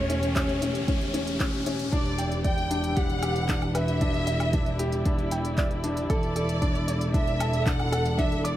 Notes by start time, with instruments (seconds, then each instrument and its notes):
Already playing: double bass section E1, string section A3 C#4 G4, grand piano C#4 G5, violin section C#5, riser
0.10 grand piano C#4, closed hi-hat
0.23 closed hi-hat
0.36 grand piano C#4, kick, clap, closed hi-hat
0.49 closed hi-hat
0.62 grand piano C#4, closed hi-hat
0.75 closed hi-hat
0.88 grand piano C#4, kick, closed hi-hat
1.01 closed hi-hat
1.14 grand piano C#4, closed hi-hat
1.27 closed hi-hat
1.40 grand piano C#4, kick, clap, closed hi-hat
1.53 closed hi-hat
1.66 grand piano C#4, closed hi-hat
1.79 closed hi-hat
1.92 double bass section E1, string section E3, grand piano D4, violin section D5, kick, closed hi-hat
1.97 string section E4
2.06 closed hi-hat
2.18 grand piano G5, closed hi-hat
2.32 closed hi-hat
2.44 string section D5, grand piano D5, violin section G5, kick, closed hi-hat
2.58 closed hi-hat
2.71 grand piano D4, closed hi-hat
2.84 closed hi-hat
2.97 grand piano G4, violin section F#5, kick, closed hi-hat
3.10 closed hi-hat
3.23 grand piano G4, closed hi-hat, low woodblock
3.36 closed hi-hat
3.49 grand piano D4, kick, clap, closed hi-hat
3.62 closed hi-hat, low woodblock
3.75 grand piano B4, violin section E5, closed hi-hat, low woodblock
3.88 closed hi-hat
4.01 grand piano D4, kick, closed hi-hat
4.14 closed hi-hat
4.27 grand piano E5, closed hi-hat
4.40 closed hi-hat, low woodblock
4.53 grand piano D4, kick, closed hi-hat
4.66 closed hi-hat
4.79 grand piano G4, closed hi-hat
4.92 closed hi-hat
5.05 grand piano D4, kick, closed hi-hat
5.19 closed hi-hat
5.31 grand piano G5, closed hi-hat
5.45 closed hi-hat
5.58 grand piano D5, kick, clap, closed hi-hat
5.71 closed hi-hat
5.84 grand piano D4, closed hi-hat
5.97 closed hi-hat
6.10 double bass section E1, grand piano A4, violin section D5, kick, closed hi-hat
6.23 closed hi-hat
6.36 grand piano A4, closed hi-hat
6.49 string section A4, closed hi-hat
6.62 grand piano D4, kick, closed hi-hat
6.75 closed hi-hat
6.88 grand piano D5, closed hi-hat
7.01 closed hi-hat
7.14 grand piano D4, violin section E5, kick, closed hi-hat
7.27 closed hi-hat
7.40 grand piano A5, closed hi-hat, low woodblock
7.53 closed hi-hat
7.66 grand piano D4, violin section F#5, kick, clap, closed hi-hat
7.80 closed hi-hat, low woodblock
7.92 grand piano A4, closed hi-hat, low woodblock
8.06 closed hi-hat
8.18 grand piano D4, violin section E5, kick, closed hi-hat
8.32 closed hi-hat
8.44 violin section D5, grand piano D6, closed hi-hat